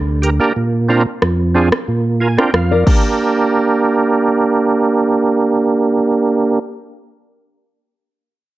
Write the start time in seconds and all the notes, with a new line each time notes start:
Already playing: D2
0.22 G4 A#4, closed hi-hat
0.40 A#3 D4 G4 A#4
0.56 A#2
0.89 C4 D4 F4 A#4
1.22 F2, cross-stick
1.55 C4 D4 F4 G#4
1.72 cross-stick
1.88 A#2
2.20 F4 A#4 G#5
2.37 C4 D4 F4 A#4 G5, cross-stick
2.54 F2 F5, cross-stick
2.71 A#4 D5
2.87 A#3 D4 G4 A#4, kick, crash